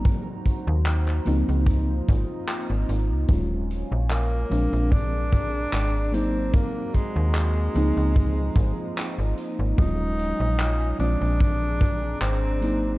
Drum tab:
HH |x-x-x-xxx-x-x-x-|x-x-x-xxx-x-x-x-|x-x-x-xxx-x-x-x-|x-x-x-xxx-x-x-x-|
CP |----xx------x---|----x-------x---|----x-------x---|----x-------x---|
BD |o-o-----o-o-----|o-------o-o-----|o-o-----o-o-----|o-------o-o-----|